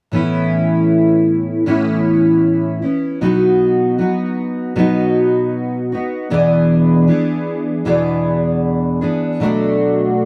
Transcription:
0.12 A2 E3 B3 C#4
0.16 E4
1.66 A2 E3 B3 C#4 E4
2.82 B3 C#4 E4
3.21 B2 F#3 B3 D#4 F#4
3.98 F#3 B3 D#4 F#4
4.76 B2 F#3 B3 D#4 F#4
5.92 B3 D#4 F#4
6.30 E2 B2 E3 B3 D4 G#4
7.07 E3 B3 D4 G#4
7.85 E2 B2 E3 B3 D4 G#4
9.01 E3 B3 D4 G#4
9.40 B2 F#3 A3 D4 F#4

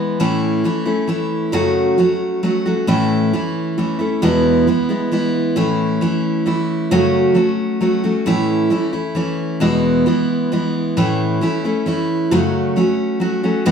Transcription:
Already playing: E3 G#3 B3 E4
0.20 A2 E3 A3 C#4 E4
0.64 E3 A3 C#4 E4
0.85 A3 C#4 E4
1.08 E3 A3 C#4 E4
1.52 F#2 C#3 F#3 A3 C#4 F#4
1.98 F#3 A3 C#4 F#4
2.43 F#3 A3 C#4 F#4
2.66 F#3 A3 C#4 F#4
2.87 A2 E3 A3 C#4 E4
3.33 E3 A3 C#4 E4
3.78 E3 A3 C#4 E4
3.99 A3 C#4 E4
4.22 E2 B2 E3 G#3 B3 E4
4.67 E3 G#3 B3 E4
4.89 E3 G#3 B3 E4
5.12 E3 G#3 B3 E4
5.56 A2 E3 A3 C#4 E4
6.01 E3 A3 C#4 E4
6.46 E3 A3 C#4 E4
6.91 F#2 C#3 F#3 A3 C#4 F#4
7.34 F#3 A3 C#4 F#4
7.81 F#3 A3 C#4 F#4
8.04 F#3 A3 C#4 F#4
8.26 A2 E3 A3 C#4 E4
8.70 E3 A3 C#4 E4
8.93 A3 C#4 E4
9.15 E3 A3 C#4 E4
9.60 E2 B2 E3 G#3 B3 E4
10.06 E3 G#3 B3 E4
10.52 E3 G#3 B3 E4
10.97 A2 E3 A3 C#4 E4
11.41 E3 A3 C#4 E4
11.64 A3 C#4 E4
11.86 E3 A3 C#4 E4
12.31 F#2 C#3 F#3 A3 C#4 F#4
12.76 F#3 A3 C#4 F#4
13.20 F#3 A3 C#4 F#4
13.43 F#3 A3 C#4 F#4
13.66 E2 B2 E3 G#3 B3 F#4

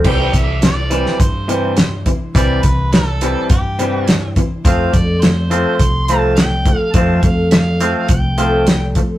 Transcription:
0.04 C2 C3 E3 G3 D4 C5 G5, kick, crash
0.33 C2 C3 E3 G3 D4 E4 C5 E5, kick, closed hi-hat
0.62 C3 E3 D5, snare, closed hi-hat
0.66 C5
0.90 C3 E3 G3, closed hi-hat
1.06 snare
1.20 G2 C3 E3 C5, kick, closed hi-hat
1.48 C3 E3 G3 D4 E4 C5, closed hi-hat
1.77 C3 E3 E4, snare, closed hi-hat
2.05 C3 E3 G3 D4 E4 C5, kick, closed hi-hat
2.34 C2 C3 E3 G3 D4 E4 C5 D5, kick, closed hi-hat
2.62 C2 C3 E3 G3 D4 E4 B4, kick, closed hi-hat
2.92 C3 E3 G3 A4, snare, closed hi-hat
3.21 C3 E3 G3, closed hi-hat
3.49 G2 C3 E3 G4, kick, closed hi-hat
3.78 C3 E3 G3 D4 E4 C5, closed hi-hat
4.06 C3 E3 G3 E4 F4 C5, snare, closed hi-hat
4.35 C3 E3 G3 D4 E4 C5, kick, closed hi-hat
4.64 F2 F3 G3 A3 C4 G4 A4 F5, kick, closed hi-hat
4.93 F2 F3 A3 C4 G4 A4 D5, kick, closed hi-hat
5.21 F3 G3 A3 C4 G4 A4 C5, snare, closed hi-hat
5.50 F3 A3 C4, closed hi-hat
5.79 C2 F3 A3 C6, kick, closed hi-hat
6.06 F3 A3 C4 G4 A4 A5, closed hi-hat
6.11 C4
6.35 F3 A3 G5, snare, closed hi-hat
6.66 F3 A3 C4 G4 A4, kick, closed hi-hat
6.78 F5
6.93 F2 F3 G3 A3 C4 G4 A4 A5, kick, closed hi-hat
7.22 F2 F3 A3 G4 A4 F5, kick, closed hi-hat
7.26 C4
7.51 F3 G3 A3 C4 G4 F5, snare, closed hi-hat
7.80 F3 A3 C4, closed hi-hat
8.08 C2 F3 A3 G5, kick, closed hi-hat
8.38 F3 A3 C4 G4 A4, closed hi-hat
8.67 F3 C4, snare, closed hi-hat
8.95 F3 A3 G4 A4, kick, closed hi-hat
8.99 C4

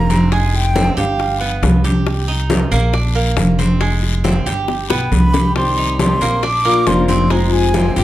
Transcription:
Already playing: F1 A#5
0.10 C4, high conga, short guiro
0.32 G#3 G#5, high bongo, high conga, long guiro
0.54 G5, high bongo, high conga
0.76 C4, high bongo, high conga, short guiro
0.97 G1 G4 F5, high bongo, short guiro
1.19 high bongo, high conga, long guiro
1.41 B3, high bongo, high conga
1.63 C2, high bongo, low bongo, high conga, short guiro
1.84 G4, high conga, short guiro
2.06 high bongo, high conga, long guiro
2.28 D#4, high conga
2.50 high bongo, high conga, short guiro
2.72 A#1 A#3, high conga, short guiro
2.93 D4, high bongo, high conga, long guiro
3.15 A#3, high conga
3.37 F1, high bongo, low bongo, high conga, short guiro
3.59 C4, high conga, short guiro
3.81 G#3, high bongo, high conga, long guiro
4.03 high bongo, high conga
4.24 C4, high bongo, high conga, short guiro
4.46 G1 G4, high bongo, short guiro
4.68 high bongo, high conga, long guiro
4.90 B1 B3 G5, high bongo, high conga
5.12 C2 B5, low bongo, high conga, short guiro
5.33 G4, low bongo, high conga, short guiro
5.56 C3 D#3 G3 C4 G4 C6, high bongo, high conga, long guiro
5.78 D#4, high conga
5.99 C3 D#3 G3 C4 G4 C6, high bongo, high conga, short guiro
6.21 A#1 G3 A#3 C4 G4, high conga, short guiro
6.43 D4 D6, muted nylon-string guitar stroke, high bongo, high conga, long guiro
6.65 A#3 D4 F4, high conga
6.87 F1 F3 A#3 D4 F4 C6, high bongo, low bongo, high conga, short guiro
7.08 C4 C6, high conga, short guiro
7.30 C3 F3 G#3 C4 F4 A#5, high bongo, high conga, long guiro
7.52 G#5, high bongo, high conga
7.74 C3 F3 G#3 C4 F4, high bongo, high conga, short guiro
7.96 G1 G#3 C4 F4 G4 G5, high bongo, short guiro

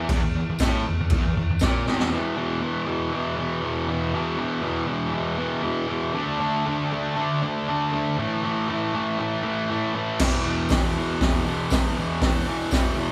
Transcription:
0.09 E2, kick, crash
0.24 E2
0.36 E2
0.50 E2
0.59 A2, kick, snare, tambourine, crash
0.87 E2
1.00 E2
1.10 E2, kick, crash
1.26 E2
1.37 E2
1.50 E2
1.59 A#2, kick, snare, tambourine, crash
1.87 E2, snare
2.00 snare
2.11 E2 B2 E3
2.36 E2 B2 E3
2.61 E2 B2 E3
2.87 E2 B2 E3
3.13 E2 B2 E3
3.36 E2 B2 E3
3.62 E2 B2 E3
3.88 E2 B2 E3
4.14 E2 B2 E3
4.38 E2 B2 E3
4.63 E2 B2 E3
4.87 E2 B2 E3
5.13 E2 B2 E3
5.38 E2 B2 E3
5.62 E2 B2 E3
5.87 E2 B2 E3
6.14 D3 A3 D4
6.40 D3 A3 D4
6.66 D3 A3 D4
6.92 D3 A3 D4
7.16 D3 A3 D4
7.43 D3 A3 D4
7.68 D3 A3 D4
7.93 D3 A3 D4
8.18 A2 E3 A3
8.44 A2 E3 A3
8.69 A2 E3 A3
8.93 A2 E3 A3
9.18 A2 E3 A3
9.44 A2 E3 A3
9.70 A2 E3 A3
9.94 A2 E3 A3
10.19 E2 B2 E3, kick, snare, crash
10.45 E2 B2 E3
10.69 E2 B2 E3, kick, snare, open hi-hat, tambourine
10.97 E2 B2 E3
11.21 E2 B2 E3, kick, snare, open hi-hat
11.45 E2 B2 E3
11.70 E2 B2 E3, kick, snare, open hi-hat, tambourine
11.98 E2 B2 E3
12.21 E2 B2 E3, kick, snare, open hi-hat
12.47 E2 B2 E3
12.71 E2 B2 E3, kick, snare, open hi-hat, tambourine
12.97 E2 B2 E3

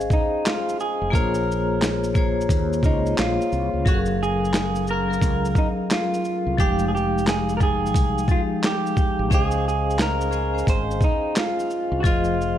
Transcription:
Already playing: C#4 G#4 C5 D#5 F5 G#5
0.01 shaker
0.10 D#4, kick, shaker
0.46 F4, snare, clap, closed hi-hat, shaker
0.69 shaker
0.80 G#4, shaker
1.01 F1
1.10 A#1 A#3 F4 G#4 C5 C#5, kick
1.15 A#4, closed hi-hat, shaker
1.34 shaker
1.52 shaker
1.82 snare, clap, closed hi-hat, shaker
2.04 shaker
2.14 A#3 F4 G#4 C5 C#5, kick, shaker
2.41 shaker
2.49 D#2, kick, closed hi-hat, shaker
2.73 shaker
2.83 C#2 A#3 D#4 F4 G#4 C5 C#5, kick, shaker
3.06 shaker
3.18 A#1 F4, snare, clap, closed hi-hat, shaker
3.41 shaker
3.52 C2, shaker
3.74 C#2
3.85 F#1 F#3 C#4 F#4 G#4 A4 F5, kick, closed hi-hat, shaker
3.94 A#4
4.06 shaker
4.23 G#4, shaker
4.45 shaker
4.54 snare, clap, closed hi-hat, shaker
4.75 shaker
4.87 F#3 C#4 G#4 A#4, shaker
4.92 A#4 F5
5.08 F#3 C#4 G#4 A#4 F5
5.13 shaker
5.22 C#2, kick, closed hi-hat, shaker
5.45 shaker
5.55 D#4, kick, shaker
5.91 F4, snare, clap, closed hi-hat, shaker
6.14 shaker
6.25 shaker
6.47 C2
6.57 F1 F3 G#3 D#4 G4 F5, kick, closed hi-hat, shaker
6.79 shaker
6.88 G#4
6.95 G4, shaker
7.18 shaker
7.27 G#4, snare, clap, closed hi-hat, shaker
7.49 shaker
7.57 F3 D#4 G#4 A#4 G5, kick, shaker
7.62 G#4 G#5
7.86 shaker
7.94 C2, kick, closed hi-hat, shaker
8.18 shaker
8.28 F3 G#3 D#4 F4 G4 F5, kick, shaker
8.63 G4, snare, clap, closed hi-hat, shaker
8.86 shaker
8.97 kick, shaker
9.19 G#1
9.30 C#2 C#4 G#4 C5 D#5 F5, kick, closed hi-hat, shaker
9.34 G#4
9.51 shaker
9.68 G#4, shaker
9.90 shaker
9.99 A#4, snare, clap, closed hi-hat, shaker
10.21 shaker
10.30 C#4 G#4 C5 D#5 G#5, shaker
10.53 C#4 G#4 C5 D#5 G#5
10.58 shaker
10.67 G#1 C5, kick, closed hi-hat, shaker
10.91 shaker
11.01 D#4, kick, shaker
11.36 F4, snare, clap, closed hi-hat, shaker
11.60 shaker
11.70 shaker
11.92 C2
12.00 F3 F4 F#4, kick
12.04 F1 F4 G#4 C5 D#5, closed hi-hat, shaker
12.24 shaker
12.41 shaker

